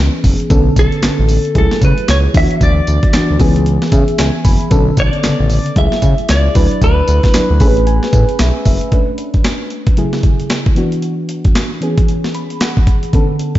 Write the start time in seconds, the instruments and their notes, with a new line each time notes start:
Already playing: fm electric piano E3 B3 C#4 G#4
0.24 analog synth bass F#1, kick, open hi-hat, tambourine
0.40 closed hi-hat
0.50 analog synth bass B1, fm electric piano D3 B3 C#4 A4, kick, closed hi-hat, tambourine
0.76 analog synth bass B1, clean electric guitar A4, kick, closed hi-hat, tambourine
0.92 closed hi-hat
1.02 analog synth bass A1, fm electric piano D3 B3 C#4 A4, snare, clap, closed hi-hat, tambourine
1.19 analog synth bass A1
1.29 open hi-hat, tambourine
1.45 closed hi-hat
1.55 analog synth bass C#2, fm electric piano F#3 A3 E4 G#4, clean electric guitar A4, kick, closed hi-hat
1.71 snare
1.81 analog synth bass C#3, clean electric guitar B4, kick, closed hi-hat, tambourine
1.98 closed hi-hat
2.08 analog synth bass C#2, clean electric guitar C#5, snare, clap, closed hi-hat, tambourine
2.33 analog synth bass D2, fm electric piano E3 B3 D4 F4, clean electric guitar E5, kick, open hi-hat, tambourine
2.41 fm electric piano F#4
2.51 closed hi-hat
2.61 analog synth bass D2, clean electric guitar D5, kick, closed hi-hat, tambourine
2.87 analog synth bass D2, closed hi-hat, tambourine
3.03 kick, closed hi-hat
3.13 analog synth bass D2, fm electric piano E3 B3 D4 F#4, snare, clap, closed hi-hat, tambourine
3.30 analog synth bass D2
3.39 analog synth bass C#2, fm electric piano E3 B3 C#4 G#4, kick, open hi-hat, tambourine
3.56 closed hi-hat
3.66 closed hi-hat
3.82 snare
3.92 analog synth bass C#3, fm electric piano E5, kick, closed hi-hat, tambourine
4.08 closed hi-hat
4.18 analog synth bass C#2, fm electric piano G#5, snare, clap, closed hi-hat, tambourine
4.45 analog synth bass F#1, fm electric piano B5, kick, open hi-hat, tambourine
4.61 closed hi-hat
4.70 analog synth bass B1, fm electric piano D3 B3 C#4 A4, kick, closed hi-hat, tambourine
4.97 analog synth bass B1, clean electric guitar D5, kick, closed hi-hat, tambourine
5.13 closed hi-hat
5.23 analog synth bass A1, fm electric piano C#3 D3 B3 A4, snare, clap, closed hi-hat, tambourine
5.40 analog synth bass A1
5.50 open hi-hat, tambourine
5.66 closed hi-hat
5.76 analog synth bass C#2, fm electric piano F#3 A3 E4 G#4, clean electric guitar E5, kick, closed hi-hat
5.92 snare
6.02 analog synth bass C#3, kick, closed hi-hat, tambourine
6.18 closed hi-hat
6.29 analog synth bass C#2, clean electric guitar D5, snare, clap, closed hi-hat, tambourine
6.55 analog synth bass D2, fm electric piano F#3 D4 E4 B4, kick, open hi-hat, tambourine
6.71 closed hi-hat
6.82 analog synth bass D2, clean electric guitar B4, kick, closed hi-hat, tambourine
7.08 analog synth bass D2, closed hi-hat, tambourine
7.23 kick, snare, closed hi-hat
7.33 analog synth bass D2, fm electric piano F#3 D4 E4 B4, snare, clap, closed hi-hat, tambourine
7.50 analog synth bass D2
7.60 analog synth bass A1, fm electric piano A3 C#4 G#4 A4 B5, kick, open hi-hat, tambourine
7.68 fm electric piano B4
7.77 closed hi-hat
7.87 fm electric piano G#5, closed hi-hat
8.03 snare
8.13 analog synth bass A2, kick, closed hi-hat, tambourine
8.29 closed hi-hat
8.39 analog synth bass B1, fm electric piano E5, snare, clap, closed hi-hat, tambourine
8.65 analog synth bass F#1, fm electric piano E5, kick, open hi-hat, tambourine
8.81 closed hi-hat
8.91 fm electric piano A3 C#4 D4 B4, kick, closed hi-hat
9.18 closed hi-hat
9.34 kick, closed hi-hat
9.44 snare, clap, closed hi-hat
9.70 closed hi-hat
9.87 kick, closed hi-hat
9.97 fm electric piano C#3 F#3 A3 E4 G#4, closed hi-hat
10.13 snare
10.23 kick, closed hi-hat
10.40 closed hi-hat
10.50 snare, clap, closed hi-hat
10.66 kick
10.75 fm electric piano E3 B3 D4 F#4, closed hi-hat
10.92 closed hi-hat
11.02 closed hi-hat
11.29 closed hi-hat
11.45 kick, closed hi-hat
11.55 snare, clap, closed hi-hat
11.81 fm electric piano E3 B3 C#4 G#4, closed hi-hat
11.98 kick, closed hi-hat
12.08 closed hi-hat
12.24 snare
12.34 fm electric piano B5, closed hi-hat
12.50 closed hi-hat
12.61 fm electric piano F#5, snare, clap, closed hi-hat
12.77 kick
12.87 kick, closed hi-hat
13.03 closed hi-hat
13.13 fm electric piano D3 B3 C#4 A4, kick, closed hi-hat
13.39 closed hi-hat
13.55 kick, closed hi-hat